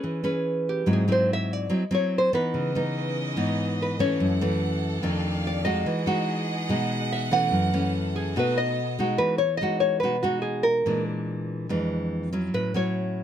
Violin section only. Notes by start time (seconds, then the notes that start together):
2.54 C#4 B4 D#5
4.20 A4 F#5
5.03 G4 D5 F5
5.85 G#4 D#5 F#5
7.52 A4
8.33 B3 D#5